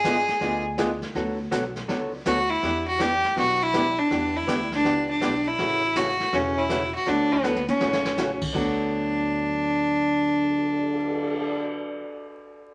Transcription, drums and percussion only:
0.04 kick, snare, hi-hat pedal
0.28 snare
0.41 brush sweep, kick, snare
0.78 kick, snare, hi-hat pedal
1.02 snare
1.15 brush sweep, kick, snare
1.52 kick, snare, hi-hat pedal
1.76 snare
1.89 brush sweep, kick, snare
2.26 kick, snare, hi-hat pedal
2.62 brush sweep, kick, snare
3.00 kick, snare, hi-hat pedal
3.24 snare
3.37 brush sweep, kick, snare
3.74 kick, snare, hi-hat pedal
4.11 brush sweep, kick, snare
4.48 kick, snare, hi-hat pedal
4.72 snare
4.85 brush sweep, kick, snare
5.22 kick, snare, hi-hat pedal
5.58 brush sweep, kick, snare
5.95 kick, snare, hi-hat pedal
6.20 snare
6.33 brush sweep, kick, snare
6.69 kick, snare, hi-hat pedal
7.06 brush sweep, kick, snare
7.44 snare, hi-hat pedal
7.56 high tom
7.68 high tom
7.80 snare
7.93 snare
8.05 snare
8.17 snare, hi-hat pedal
8.41 kick, crash
8.55 kick, crash
8.79 cymbal swell

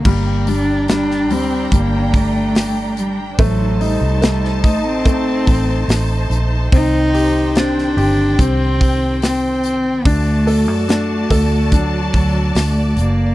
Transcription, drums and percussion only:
0.05 kick, crash
0.47 hi-hat pedal, open hi-hat
0.88 snare, hi-hat pedal, open hi-hat
1.11 snare
1.30 hi-hat pedal, open hi-hat
1.72 kick, hi-hat pedal, open hi-hat
2.14 kick, hi-hat pedal, open hi-hat
2.55 snare, hi-hat pedal, open hi-hat
2.97 hi-hat pedal, open hi-hat
3.39 kick, hi-hat pedal, open hi-hat
3.81 hi-hat pedal, open hi-hat
4.22 snare, hi-hat pedal, open hi-hat
4.45 snare
4.64 kick, hi-hat pedal, open hi-hat
5.06 kick, hi-hat pedal, open hi-hat
5.47 kick, hi-hat pedal, open hi-hat
5.89 snare, hi-hat pedal, open hi-hat
6.31 hi-hat pedal, open hi-hat
6.72 kick, hi-hat pedal, open hi-hat
7.14 hi-hat pedal, open hi-hat
7.56 snare, hi-hat pedal, open hi-hat
7.78 snare
7.98 hi-hat pedal, open hi-hat
8.39 kick, hi-hat pedal, open hi-hat
8.81 kick, hi-hat pedal, open hi-hat
9.22 snare, hi-hat pedal, open hi-hat
9.64 hi-hat pedal, open hi-hat
10.05 kick, hi-hat pedal, open hi-hat
10.47 hi-hat pedal, open hi-hat
10.89 snare, hi-hat pedal, open hi-hat
11.30 kick, hi-hat pedal, open hi-hat
11.72 kick, hi-hat pedal, open hi-hat
12.14 kick, hi-hat pedal, open hi-hat
12.55 snare, hi-hat pedal, open hi-hat
12.97 hi-hat pedal, open hi-hat

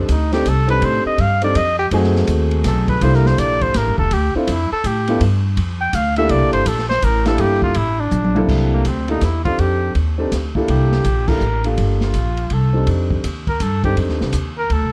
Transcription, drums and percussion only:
0.09 kick, hi-hat pedal, ride
0.32 snare, ride
0.46 kick, hi-hat pedal, ride
0.69 ride
0.82 kick, ride
1.18 kick, ride
1.42 ride
1.55 kick, hi-hat pedal, ride
1.91 kick, ride
2.04 snare
2.16 snare
2.27 kick, hi-hat pedal, ride
2.51 ride
2.64 kick, snare, hi-hat pedal, ride
2.88 kick, ride
3.01 kick, ride
3.14 snare
3.26 snare
3.38 kick, hi-hat pedal, ride
3.61 kick, ride
3.74 kick, snare, hi-hat pedal, ride
3.98 kick
4.11 kick, ride
4.47 kick, hi-hat pedal, ride
4.84 kick, hi-hat pedal, ride
5.07 ride
5.21 kick, ride
5.57 kick, ride
5.93 kick, hi-hat pedal, ride
6.16 ride
6.29 kick, ride
6.53 ride
6.66 kick, hi-hat pedal, ride
6.79 snare
6.90 snare
7.02 kick, hi-hat pedal, ride
7.26 snare, ride
7.38 kick, ride
7.62 kick
7.74 kick, ride
8.11 hi-hat pedal, high tom
8.24 high tom
8.36 high tom
8.49 kick, crash
8.85 kick, hi-hat pedal, ride
9.08 ride
9.21 kick, snare, hi-hat pedal, ride
9.45 kick, ride
9.59 kick, ride
9.95 kick, ride
10.32 kick, snare, hi-hat pedal, ride
10.55 kick
10.68 kick, ride
10.92 snare
11.04 kick, hi-hat pedal, ride
11.28 kick, crash
11.41 hi-hat pedal
11.64 ride
11.78 kick, ride
12.01 snare
12.14 kick, hi-hat pedal, ride
12.37 ride
12.50 kick, ride
12.87 kick, ride
13.11 kick
13.24 kick, hi-hat pedal, ride
13.47 kick, ride
13.60 kick, hi-hat pedal, ride
13.84 kick, ride
13.97 kick, ride
14.09 snare
14.21 snare
14.33 kick, hi-hat pedal, ride
14.70 kick, ride

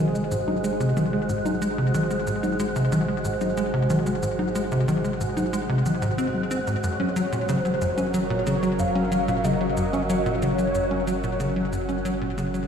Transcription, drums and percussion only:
0.15 shaker
0.32 shaker
0.48 high tom
0.64 shaker
0.81 shaker
0.97 high tom, shaker
1.29 shaker
1.46 high tom, shaker
1.62 shaker
1.94 high tom, shaker
2.11 shaker
2.27 shaker
2.43 high tom, shaker
2.60 shaker
2.76 shaker
2.92 high tom, shaker
3.25 shaker
3.41 high tom, shaker
3.57 shaker
3.90 high tom, shaker
4.06 shaker
4.23 shaker
4.39 high tom
4.55 shaker
4.72 shaker
4.88 high tom, shaker
5.05 shaker
5.21 shaker
5.37 high tom, shaker
5.53 shaker
5.86 high tom, shaker
6.02 shaker
6.18 shaker
6.35 high tom
6.51 shaker
6.67 shaker
6.84 shaker
7.00 high tom
7.16 shaker
7.33 shaker
7.49 high tom, shaker
7.65 shaker
7.82 shaker
7.98 high tom, shaker
8.14 shaker
8.47 high tom, shaker
8.63 shaker
8.79 shaker
8.95 high tom
9.12 shaker
9.28 shaker
9.44 high tom, shaker
9.77 shaker
9.93 high tom, shaker
10.10 shaker
10.26 shaker
10.42 high tom, shaker
10.59 shaker
10.75 shaker
10.91 high tom
11.07 shaker
11.24 shaker
11.40 high tom, shaker
11.73 shaker
11.89 high tom, shaker
12.05 shaker
12.38 high tom, shaker
12.54 shaker

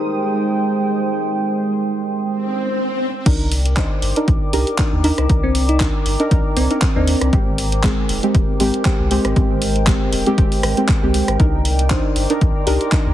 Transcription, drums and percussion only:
3.26 kick, closed hi-hat, crash
3.52 open hi-hat
3.66 closed hi-hat
3.77 kick, clap, closed hi-hat
4.02 open hi-hat
4.16 closed hi-hat
4.28 kick, closed hi-hat
4.53 open hi-hat
4.67 closed hi-hat
4.78 kick, clap, closed hi-hat
5.04 open hi-hat
5.18 cross-stick, closed hi-hat
5.30 kick, closed hi-hat
5.55 open hi-hat
5.69 closed hi-hat
5.80 kick, clap, closed hi-hat
6.06 open hi-hat
6.20 closed hi-hat
6.31 kick, closed hi-hat
6.57 open hi-hat
6.71 closed hi-hat
6.82 kick, clap, closed hi-hat
7.07 open hi-hat
7.21 cross-stick, closed hi-hat
7.33 kick, closed hi-hat
7.58 open hi-hat
7.72 closed hi-hat
7.83 kick, clap, closed hi-hat
8.09 open hi-hat
8.23 closed hi-hat
8.35 kick, closed hi-hat
8.60 open hi-hat
8.74 closed hi-hat
8.85 kick, clap, closed hi-hat
9.11 open hi-hat
9.25 cross-stick, closed hi-hat
9.36 kick, closed hi-hat
9.62 open hi-hat
9.76 closed hi-hat
9.87 kick, clap, closed hi-hat
10.13 open hi-hat
10.26 closed hi-hat
10.38 kick, closed hi-hat
10.52 open hi-hat
10.63 cross-stick, open hi-hat
10.77 closed hi-hat
10.88 kick, clap, closed hi-hat
11.14 open hi-hat
11.28 cross-stick, closed hi-hat
11.40 kick, closed hi-hat
11.65 open hi-hat
11.79 closed hi-hat
11.90 kick, clap, closed hi-hat
12.16 open hi-hat
12.30 closed hi-hat
12.41 kick, closed hi-hat
12.67 open hi-hat
12.81 closed hi-hat
12.92 kick, clap, closed hi-hat

